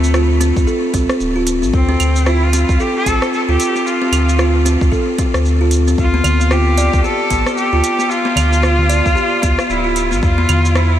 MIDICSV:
0, 0, Header, 1, 6, 480
1, 0, Start_track
1, 0, Tempo, 530973
1, 1568, Time_signature, 4, 2, 24, 8
1, 9938, End_track
2, 0, Start_track
2, 0, Title_t, "Cello"
2, 0, Program_c, 0, 42
2, 0, Note_on_c, 0, 57, 94
2, 379, Note_off_c, 0, 57, 0
2, 1571, Note_on_c, 0, 60, 103
2, 2053, Note_on_c, 0, 64, 102
2, 2066, Note_off_c, 0, 60, 0
2, 2198, Note_on_c, 0, 65, 95
2, 2211, Note_off_c, 0, 64, 0
2, 2535, Note_on_c, 0, 67, 108
2, 2549, Note_off_c, 0, 65, 0
2, 2674, Note_off_c, 0, 67, 0
2, 2679, Note_on_c, 0, 69, 117
2, 2989, Note_off_c, 0, 69, 0
2, 3020, Note_on_c, 0, 69, 112
2, 3081, Note_off_c, 0, 69, 0
2, 3161, Note_on_c, 0, 67, 109
2, 3490, Note_on_c, 0, 65, 96
2, 3504, Note_off_c, 0, 67, 0
2, 4209, Note_off_c, 0, 65, 0
2, 5420, Note_on_c, 0, 65, 110
2, 5891, Note_on_c, 0, 67, 114
2, 5905, Note_off_c, 0, 65, 0
2, 6369, Note_off_c, 0, 67, 0
2, 6375, Note_on_c, 0, 69, 115
2, 6818, Note_off_c, 0, 69, 0
2, 6847, Note_on_c, 0, 67, 108
2, 7319, Note_on_c, 0, 65, 125
2, 7333, Note_off_c, 0, 67, 0
2, 8771, Note_on_c, 0, 64, 105
2, 8785, Note_off_c, 0, 65, 0
2, 9145, Note_on_c, 0, 65, 93
2, 9158, Note_off_c, 0, 64, 0
2, 9239, Note_off_c, 0, 65, 0
2, 9245, Note_on_c, 0, 65, 112
2, 9727, Note_on_c, 0, 64, 96
2, 9741, Note_off_c, 0, 65, 0
2, 9938, Note_off_c, 0, 64, 0
2, 9938, End_track
3, 0, Start_track
3, 0, Title_t, "Kalimba"
3, 0, Program_c, 1, 108
3, 126, Note_on_c, 1, 65, 81
3, 357, Note_off_c, 1, 65, 0
3, 366, Note_on_c, 1, 60, 103
3, 502, Note_off_c, 1, 60, 0
3, 607, Note_on_c, 1, 69, 83
3, 838, Note_off_c, 1, 69, 0
3, 846, Note_on_c, 1, 60, 109
3, 982, Note_off_c, 1, 60, 0
3, 1228, Note_on_c, 1, 65, 77
3, 1321, Note_off_c, 1, 65, 0
3, 1467, Note_on_c, 1, 60, 74
3, 1561, Note_off_c, 1, 60, 0
3, 1706, Note_on_c, 1, 60, 111
3, 1763, Note_off_c, 1, 60, 0
3, 2045, Note_on_c, 1, 65, 84
3, 2277, Note_off_c, 1, 65, 0
3, 2289, Note_on_c, 1, 60, 106
3, 2424, Note_off_c, 1, 60, 0
3, 2531, Note_on_c, 1, 69, 80
3, 2759, Note_off_c, 1, 69, 0
3, 2772, Note_on_c, 1, 60, 105
3, 2905, Note_off_c, 1, 60, 0
3, 3152, Note_on_c, 1, 65, 74
3, 3243, Note_off_c, 1, 65, 0
3, 3394, Note_on_c, 1, 60, 74
3, 3485, Note_off_c, 1, 60, 0
3, 3631, Note_on_c, 1, 60, 100
3, 3686, Note_off_c, 1, 60, 0
3, 3966, Note_on_c, 1, 65, 81
3, 4197, Note_off_c, 1, 65, 0
3, 4208, Note_on_c, 1, 60, 102
3, 4343, Note_off_c, 1, 60, 0
3, 4445, Note_on_c, 1, 69, 78
3, 4676, Note_off_c, 1, 69, 0
3, 4688, Note_on_c, 1, 60, 102
3, 4823, Note_off_c, 1, 60, 0
3, 5071, Note_on_c, 1, 65, 76
3, 5163, Note_off_c, 1, 65, 0
3, 5312, Note_on_c, 1, 60, 76
3, 5403, Note_off_c, 1, 60, 0
3, 5550, Note_on_c, 1, 59, 105
3, 5605, Note_off_c, 1, 59, 0
3, 5886, Note_on_c, 1, 65, 80
3, 6117, Note_off_c, 1, 65, 0
3, 6127, Note_on_c, 1, 74, 81
3, 6262, Note_off_c, 1, 74, 0
3, 6366, Note_on_c, 1, 67, 87
3, 6597, Note_off_c, 1, 67, 0
3, 6603, Note_on_c, 1, 59, 101
3, 6741, Note_off_c, 1, 59, 0
3, 6986, Note_on_c, 1, 65, 79
3, 7081, Note_off_c, 1, 65, 0
3, 7219, Note_on_c, 1, 59, 75
3, 7317, Note_off_c, 1, 59, 0
3, 7460, Note_on_c, 1, 59, 104
3, 7520, Note_off_c, 1, 59, 0
3, 7798, Note_on_c, 1, 65, 79
3, 8033, Note_off_c, 1, 65, 0
3, 8040, Note_on_c, 1, 74, 80
3, 8179, Note_off_c, 1, 74, 0
3, 8276, Note_on_c, 1, 67, 85
3, 8512, Note_off_c, 1, 67, 0
3, 8520, Note_on_c, 1, 59, 99
3, 8659, Note_off_c, 1, 59, 0
3, 8898, Note_on_c, 1, 65, 74
3, 8997, Note_off_c, 1, 65, 0
3, 9141, Note_on_c, 1, 59, 80
3, 9238, Note_off_c, 1, 59, 0
3, 9384, Note_on_c, 1, 59, 106
3, 9442, Note_off_c, 1, 59, 0
3, 9723, Note_on_c, 1, 64, 88
3, 9938, Note_off_c, 1, 64, 0
3, 9938, End_track
4, 0, Start_track
4, 0, Title_t, "Sub bass"
4, 0, Program_c, 2, 38
4, 0, Note_on_c, 2, 38, 91
4, 473, Note_off_c, 2, 38, 0
4, 512, Note_on_c, 2, 38, 90
4, 593, Note_off_c, 2, 38, 0
4, 849, Note_on_c, 2, 36, 91
4, 967, Note_off_c, 2, 36, 0
4, 1089, Note_on_c, 2, 26, 81
4, 1471, Note_on_c, 2, 33, 97
4, 1484, Note_off_c, 2, 26, 0
4, 1552, Note_off_c, 2, 33, 0
4, 1570, Note_on_c, 2, 38, 96
4, 1777, Note_off_c, 2, 38, 0
4, 1809, Note_on_c, 2, 38, 88
4, 2394, Note_off_c, 2, 38, 0
4, 2432, Note_on_c, 2, 38, 92
4, 2513, Note_off_c, 2, 38, 0
4, 2769, Note_on_c, 2, 33, 89
4, 2887, Note_off_c, 2, 33, 0
4, 3151, Note_on_c, 2, 38, 92
4, 3232, Note_off_c, 2, 38, 0
4, 3725, Note_on_c, 2, 38, 87
4, 4312, Note_off_c, 2, 38, 0
4, 4351, Note_on_c, 2, 38, 98
4, 4432, Note_off_c, 2, 38, 0
4, 4829, Note_on_c, 2, 38, 97
4, 5382, Note_off_c, 2, 38, 0
4, 5410, Note_on_c, 2, 38, 95
4, 5617, Note_off_c, 2, 38, 0
4, 5649, Note_on_c, 2, 38, 93
4, 6233, Note_off_c, 2, 38, 0
4, 6268, Note_on_c, 2, 38, 96
4, 6351, Note_off_c, 2, 38, 0
4, 6607, Note_on_c, 2, 33, 93
4, 6727, Note_off_c, 2, 33, 0
4, 6986, Note_on_c, 2, 38, 90
4, 7069, Note_off_c, 2, 38, 0
4, 7566, Note_on_c, 2, 38, 96
4, 8152, Note_off_c, 2, 38, 0
4, 8191, Note_on_c, 2, 38, 96
4, 8272, Note_off_c, 2, 38, 0
4, 8528, Note_on_c, 2, 38, 90
4, 8647, Note_off_c, 2, 38, 0
4, 8766, Note_on_c, 2, 26, 85
4, 9150, Note_on_c, 2, 33, 105
4, 9164, Note_off_c, 2, 26, 0
4, 9232, Note_off_c, 2, 33, 0
4, 9247, Note_on_c, 2, 40, 96
4, 9455, Note_off_c, 2, 40, 0
4, 9483, Note_on_c, 2, 40, 95
4, 9938, Note_off_c, 2, 40, 0
4, 9938, End_track
5, 0, Start_track
5, 0, Title_t, "Darbuka"
5, 5640, Note_on_c, 9, 62, 53
5, 5640, Note_on_c, 9, 64, 84
5, 5730, Note_off_c, 9, 62, 0
5, 5731, Note_off_c, 9, 64, 0
5, 5783, Note_on_c, 9, 63, 40
5, 5873, Note_off_c, 9, 63, 0
5, 6601, Note_on_c, 9, 62, 31
5, 6691, Note_off_c, 9, 62, 0
5, 6744, Note_on_c, 9, 63, 36
5, 6835, Note_off_c, 9, 63, 0
5, 6984, Note_on_c, 9, 63, 35
5, 7074, Note_off_c, 9, 63, 0
5, 7557, Note_on_c, 9, 64, 73
5, 7559, Note_on_c, 9, 62, 61
5, 7647, Note_off_c, 9, 64, 0
5, 7649, Note_off_c, 9, 62, 0
5, 7707, Note_on_c, 9, 63, 34
5, 7797, Note_off_c, 9, 63, 0
5, 7942, Note_on_c, 9, 64, 84
5, 8032, Note_off_c, 9, 64, 0
5, 8515, Note_on_c, 9, 63, 64
5, 8605, Note_off_c, 9, 63, 0
5, 8661, Note_on_c, 9, 63, 39
5, 8664, Note_on_c, 9, 62, 33
5, 8751, Note_off_c, 9, 63, 0
5, 8755, Note_off_c, 9, 62, 0
5, 9004, Note_on_c, 9, 62, 36
5, 9094, Note_off_c, 9, 62, 0
5, 9488, Note_on_c, 9, 62, 70
5, 9488, Note_on_c, 9, 64, 76
5, 9578, Note_off_c, 9, 64, 0
5, 9579, Note_off_c, 9, 62, 0
5, 9626, Note_on_c, 9, 63, 38
5, 9716, Note_off_c, 9, 63, 0
5, 9938, End_track
6, 0, Start_track
6, 0, Title_t, "Drums"
6, 34, Note_on_c, 9, 82, 46
6, 124, Note_off_c, 9, 82, 0
6, 128, Note_on_c, 9, 37, 83
6, 132, Note_on_c, 9, 82, 33
6, 218, Note_off_c, 9, 37, 0
6, 222, Note_off_c, 9, 82, 0
6, 369, Note_on_c, 9, 42, 88
6, 373, Note_on_c, 9, 82, 84
6, 460, Note_off_c, 9, 42, 0
6, 463, Note_off_c, 9, 82, 0
6, 511, Note_on_c, 9, 36, 117
6, 515, Note_on_c, 9, 82, 47
6, 602, Note_off_c, 9, 36, 0
6, 605, Note_off_c, 9, 82, 0
6, 611, Note_on_c, 9, 82, 33
6, 701, Note_off_c, 9, 82, 0
6, 848, Note_on_c, 9, 36, 107
6, 848, Note_on_c, 9, 42, 92
6, 852, Note_on_c, 9, 82, 80
6, 938, Note_off_c, 9, 36, 0
6, 938, Note_off_c, 9, 42, 0
6, 942, Note_off_c, 9, 82, 0
6, 990, Note_on_c, 9, 37, 80
6, 994, Note_on_c, 9, 82, 46
6, 1080, Note_off_c, 9, 37, 0
6, 1084, Note_off_c, 9, 82, 0
6, 1089, Note_on_c, 9, 82, 36
6, 1179, Note_off_c, 9, 82, 0
6, 1326, Note_on_c, 9, 42, 88
6, 1330, Note_on_c, 9, 82, 82
6, 1417, Note_off_c, 9, 42, 0
6, 1420, Note_off_c, 9, 82, 0
6, 1474, Note_on_c, 9, 82, 40
6, 1564, Note_off_c, 9, 82, 0
6, 1569, Note_on_c, 9, 36, 124
6, 1572, Note_on_c, 9, 82, 32
6, 1659, Note_off_c, 9, 36, 0
6, 1662, Note_off_c, 9, 82, 0
6, 1807, Note_on_c, 9, 42, 87
6, 1807, Note_on_c, 9, 75, 74
6, 1811, Note_on_c, 9, 82, 87
6, 1898, Note_off_c, 9, 42, 0
6, 1898, Note_off_c, 9, 75, 0
6, 1902, Note_off_c, 9, 82, 0
6, 1951, Note_on_c, 9, 82, 48
6, 2042, Note_off_c, 9, 82, 0
6, 2047, Note_on_c, 9, 37, 77
6, 2051, Note_on_c, 9, 82, 36
6, 2138, Note_off_c, 9, 37, 0
6, 2142, Note_off_c, 9, 82, 0
6, 2288, Note_on_c, 9, 42, 91
6, 2292, Note_on_c, 9, 82, 79
6, 2379, Note_off_c, 9, 42, 0
6, 2383, Note_off_c, 9, 82, 0
6, 2432, Note_on_c, 9, 36, 115
6, 2436, Note_on_c, 9, 82, 47
6, 2523, Note_off_c, 9, 36, 0
6, 2526, Note_off_c, 9, 82, 0
6, 2534, Note_on_c, 9, 82, 31
6, 2624, Note_off_c, 9, 82, 0
6, 2768, Note_on_c, 9, 36, 59
6, 2769, Note_on_c, 9, 42, 85
6, 2773, Note_on_c, 9, 82, 85
6, 2859, Note_off_c, 9, 36, 0
6, 2860, Note_off_c, 9, 42, 0
6, 2864, Note_off_c, 9, 82, 0
6, 2912, Note_on_c, 9, 37, 75
6, 2916, Note_on_c, 9, 82, 43
6, 3003, Note_off_c, 9, 37, 0
6, 3007, Note_off_c, 9, 82, 0
6, 3014, Note_on_c, 9, 82, 34
6, 3104, Note_off_c, 9, 82, 0
6, 3251, Note_on_c, 9, 42, 82
6, 3255, Note_on_c, 9, 82, 84
6, 3342, Note_off_c, 9, 42, 0
6, 3346, Note_off_c, 9, 82, 0
6, 3398, Note_on_c, 9, 82, 42
6, 3488, Note_off_c, 9, 82, 0
6, 3497, Note_on_c, 9, 82, 33
6, 3588, Note_off_c, 9, 82, 0
6, 3730, Note_on_c, 9, 42, 87
6, 3730, Note_on_c, 9, 75, 73
6, 3734, Note_on_c, 9, 82, 82
6, 3821, Note_off_c, 9, 42, 0
6, 3821, Note_off_c, 9, 75, 0
6, 3825, Note_off_c, 9, 82, 0
6, 3878, Note_on_c, 9, 82, 46
6, 3968, Note_off_c, 9, 82, 0
6, 3970, Note_on_c, 9, 37, 78
6, 3974, Note_on_c, 9, 82, 36
6, 4060, Note_off_c, 9, 37, 0
6, 4064, Note_off_c, 9, 82, 0
6, 4212, Note_on_c, 9, 42, 88
6, 4216, Note_on_c, 9, 82, 80
6, 4302, Note_off_c, 9, 42, 0
6, 4306, Note_off_c, 9, 82, 0
6, 4352, Note_on_c, 9, 36, 117
6, 4358, Note_on_c, 9, 82, 46
6, 4442, Note_off_c, 9, 36, 0
6, 4448, Note_off_c, 9, 82, 0
6, 4449, Note_on_c, 9, 36, 62
6, 4454, Note_on_c, 9, 82, 31
6, 4540, Note_off_c, 9, 36, 0
6, 4545, Note_off_c, 9, 82, 0
6, 4687, Note_on_c, 9, 42, 85
6, 4689, Note_on_c, 9, 36, 107
6, 4691, Note_on_c, 9, 82, 82
6, 4778, Note_off_c, 9, 42, 0
6, 4779, Note_off_c, 9, 36, 0
6, 4782, Note_off_c, 9, 82, 0
6, 4830, Note_on_c, 9, 37, 78
6, 4834, Note_on_c, 9, 82, 43
6, 4921, Note_off_c, 9, 37, 0
6, 4925, Note_off_c, 9, 82, 0
6, 4930, Note_on_c, 9, 82, 35
6, 5020, Note_off_c, 9, 82, 0
6, 5163, Note_on_c, 9, 42, 82
6, 5167, Note_on_c, 9, 82, 79
6, 5253, Note_off_c, 9, 42, 0
6, 5257, Note_off_c, 9, 82, 0
6, 5312, Note_on_c, 9, 82, 43
6, 5403, Note_off_c, 9, 82, 0
6, 5408, Note_on_c, 9, 36, 113
6, 5410, Note_on_c, 9, 82, 31
6, 5498, Note_off_c, 9, 36, 0
6, 5501, Note_off_c, 9, 82, 0
6, 5644, Note_on_c, 9, 42, 86
6, 5644, Note_on_c, 9, 75, 83
6, 5648, Note_on_c, 9, 82, 78
6, 5734, Note_off_c, 9, 42, 0
6, 5734, Note_off_c, 9, 75, 0
6, 5738, Note_off_c, 9, 82, 0
6, 5792, Note_on_c, 9, 82, 46
6, 5882, Note_off_c, 9, 82, 0
6, 5884, Note_on_c, 9, 37, 77
6, 5888, Note_on_c, 9, 82, 33
6, 5974, Note_off_c, 9, 37, 0
6, 5978, Note_off_c, 9, 82, 0
6, 6125, Note_on_c, 9, 42, 87
6, 6129, Note_on_c, 9, 82, 79
6, 6215, Note_off_c, 9, 42, 0
6, 6219, Note_off_c, 9, 82, 0
6, 6270, Note_on_c, 9, 36, 110
6, 6271, Note_on_c, 9, 82, 46
6, 6360, Note_off_c, 9, 36, 0
6, 6361, Note_off_c, 9, 82, 0
6, 6369, Note_on_c, 9, 82, 30
6, 6460, Note_off_c, 9, 82, 0
6, 6603, Note_on_c, 9, 42, 86
6, 6607, Note_on_c, 9, 36, 58
6, 6607, Note_on_c, 9, 82, 78
6, 6694, Note_off_c, 9, 42, 0
6, 6698, Note_off_c, 9, 36, 0
6, 6698, Note_off_c, 9, 82, 0
6, 6748, Note_on_c, 9, 37, 67
6, 6752, Note_on_c, 9, 82, 44
6, 6839, Note_off_c, 9, 37, 0
6, 6843, Note_off_c, 9, 82, 0
6, 6847, Note_on_c, 9, 82, 36
6, 6938, Note_off_c, 9, 82, 0
6, 7085, Note_on_c, 9, 42, 86
6, 7089, Note_on_c, 9, 82, 75
6, 7175, Note_off_c, 9, 42, 0
6, 7179, Note_off_c, 9, 82, 0
6, 7230, Note_on_c, 9, 82, 41
6, 7320, Note_off_c, 9, 82, 0
6, 7330, Note_on_c, 9, 82, 30
6, 7421, Note_off_c, 9, 82, 0
6, 7565, Note_on_c, 9, 42, 90
6, 7565, Note_on_c, 9, 75, 85
6, 7569, Note_on_c, 9, 82, 78
6, 7655, Note_off_c, 9, 42, 0
6, 7655, Note_off_c, 9, 75, 0
6, 7659, Note_off_c, 9, 82, 0
6, 7709, Note_on_c, 9, 82, 43
6, 7800, Note_off_c, 9, 82, 0
6, 7805, Note_on_c, 9, 37, 73
6, 7809, Note_on_c, 9, 82, 33
6, 7895, Note_off_c, 9, 37, 0
6, 7899, Note_off_c, 9, 82, 0
6, 8042, Note_on_c, 9, 42, 96
6, 8045, Note_on_c, 9, 82, 80
6, 8132, Note_off_c, 9, 42, 0
6, 8136, Note_off_c, 9, 82, 0
6, 8190, Note_on_c, 9, 36, 110
6, 8190, Note_on_c, 9, 82, 44
6, 8280, Note_off_c, 9, 36, 0
6, 8281, Note_off_c, 9, 82, 0
6, 8290, Note_on_c, 9, 82, 31
6, 8380, Note_off_c, 9, 82, 0
6, 8525, Note_on_c, 9, 42, 85
6, 8527, Note_on_c, 9, 36, 95
6, 8529, Note_on_c, 9, 82, 72
6, 8615, Note_off_c, 9, 42, 0
6, 8617, Note_off_c, 9, 36, 0
6, 8619, Note_off_c, 9, 82, 0
6, 8666, Note_on_c, 9, 37, 73
6, 8670, Note_on_c, 9, 82, 43
6, 8757, Note_off_c, 9, 37, 0
6, 8761, Note_off_c, 9, 82, 0
6, 8769, Note_on_c, 9, 82, 35
6, 8859, Note_off_c, 9, 82, 0
6, 9003, Note_on_c, 9, 42, 85
6, 9007, Note_on_c, 9, 82, 75
6, 9094, Note_off_c, 9, 42, 0
6, 9098, Note_off_c, 9, 82, 0
6, 9151, Note_on_c, 9, 82, 39
6, 9241, Note_off_c, 9, 82, 0
6, 9246, Note_on_c, 9, 36, 119
6, 9248, Note_on_c, 9, 82, 30
6, 9337, Note_off_c, 9, 36, 0
6, 9338, Note_off_c, 9, 82, 0
6, 9482, Note_on_c, 9, 42, 90
6, 9482, Note_on_c, 9, 75, 84
6, 9486, Note_on_c, 9, 82, 77
6, 9572, Note_off_c, 9, 42, 0
6, 9572, Note_off_c, 9, 75, 0
6, 9576, Note_off_c, 9, 82, 0
6, 9630, Note_on_c, 9, 82, 42
6, 9720, Note_off_c, 9, 82, 0
6, 9722, Note_on_c, 9, 37, 76
6, 9726, Note_on_c, 9, 82, 33
6, 9812, Note_off_c, 9, 37, 0
6, 9816, Note_off_c, 9, 82, 0
6, 9938, End_track
0, 0, End_of_file